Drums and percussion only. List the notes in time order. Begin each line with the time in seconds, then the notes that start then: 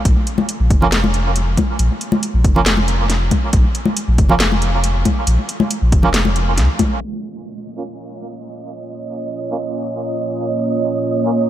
0.05 kick, closed hi-hat
0.27 closed hi-hat
0.38 high conga
0.49 closed hi-hat
0.70 kick, closed hi-hat
0.82 low conga
0.92 snare, closed hi-hat
1.04 high conga
1.14 closed hi-hat
1.36 closed hi-hat
1.57 kick, closed hi-hat, high conga
1.79 closed hi-hat
2.01 closed hi-hat
2.12 high conga
2.23 closed hi-hat
2.44 kick, closed hi-hat
2.56 low conga
2.66 snare, closed hi-hat
2.77 high conga
2.88 closed hi-hat
3.10 snare, closed hi-hat
3.31 kick, closed hi-hat, high conga
3.53 kick, closed hi-hat
3.75 closed hi-hat
3.85 high conga
3.97 closed hi-hat
4.18 kick, closed hi-hat
4.29 low conga
4.40 snare, closed hi-hat
4.52 high conga
4.62 closed hi-hat
4.84 closed hi-hat
5.05 kick, closed hi-hat, high conga
5.27 closed hi-hat
5.49 closed hi-hat
5.60 high conga
5.71 closed hi-hat
5.92 kick, closed hi-hat
6.03 low conga
6.14 snare, closed hi-hat
6.25 high conga
6.36 closed hi-hat
6.58 snare, closed hi-hat
6.79 kick, closed hi-hat, high conga